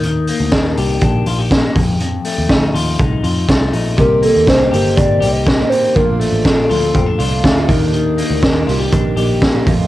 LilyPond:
<<
  \new Staff \with { instrumentName = "Soft synth lead" } { \time 4/4 \key ees \lydian \tempo 4 = 121 r1 | r1 | bes'8 a'8 c''8 c''8 d''8. ees''8. c''8 | bes'8 a'8 a'2~ a'8 r8 |
r1 | }
  \new Staff \with { instrumentName = "Clean electric guitar" } { \time 4/4 \key ees \lydian ees8 bes8 d'8 g'8 d'8 f'16 g'16 bes8 f,8 | f,8 a8 ees'8 f'8 ees'8 f'8 a8 ees'8 | c8 bes8 c'8 g'8 c'8 g'8 bes8 c'8 | bes,8 a8 d'8 f'8 c'16 d'16 f'8 a8 ees8 |
ees8 bes8 d'8 f'16 g'16 d'8 g'8 bes8 f,8 | }
  \new Staff \with { instrumentName = "Twelve-string acoustic guitar" } { \time 4/4 \key ees \lydian r1 | r1 | <ees bes c' g'>4 <ees bes c' g'>8 <ees bes c' g'>4 <ees bes c' g'>8. <c ees bes c' g'>8. | <f a d' f'>4 <f a d' f'>8 <f a d' f'>4 <f a d' f'>8. <bes, f a d' f'>16 <ees bes d' g'>8~ |
<ees bes d' g'>4 <ees bes d' g'>8 <ees bes d' g'>4 <ees bes d' g'>8. <ees bes d' g'>16 <f, c ees a ees' f'>8 | }
  \new Staff \with { instrumentName = "Picked electric bass" } { \clef bass \time 4/4 \key ees \lydian ees,8. d,16 r8 c,8 bes,,8 bes,,4 f,8~ | f,8 r16 ees,16 d,8 ees,8 c,8 f,8 c,8 bes,,8 | c,8. ees,16 c,8 g,,8 g,,8 c,4 r8 | bes,,8. a,,16 bes,,8 d,8 f,8 c,8 d,8 ees,8~ |
ees,8. d,16 ees,8 c,8 bes,,8 bes,,4 f,8 | }
  \new DrumStaff \with { instrumentName = "Drums" } \drummode { \time 4/4 hh8 hho8 <hh bd sn>8 hho8 <hh bd>8 hho8 <hh bd sn>8 <hho bd>8 | hh8 hho8 <hh bd sn>8 hho8 <hh bd>8 hho8 <hh bd sn>8 hho8 | <hh bd>8 hho8 <hh bd sn>8 hho8 <hh bd>8 hho8 <hh bd sn>8 hho8 | <hh bd>8 hho8 <hh bd sn>8 hho8 <hh bd>8 hho8 <hh bd sn>8 <hho bd>8 |
hh8 hho8 <hh bd sn>8 hho8 <hh bd>8 hho8 <hh bd sn>8 <hho bd>8 | }
>>